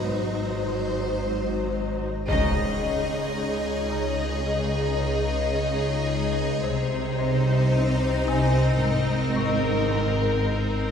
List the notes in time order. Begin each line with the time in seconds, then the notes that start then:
Already playing: F#3 D#4 F#4 B4 D#5
0.09 G#1 G#2 C5
0.63 G#2
1.18 G#2
1.73 G#3
2.27 C#2 C#3 G#3 D#4 G#4 C#5 D#5, impact
2.82 C#4
3.37 C#4
3.91 C#3 A#5
4.46 C#3
5.00 C#3
5.55 C#3
6.10 C#3
6.63 C2 C3 C4 D#4 C5 D#5
7.19 C4
7.73 C4
8.28 C3 G#5
8.82 G#1 G#2 A#4
9.36 G#2 C#6
9.92 G#2
10.46 G#2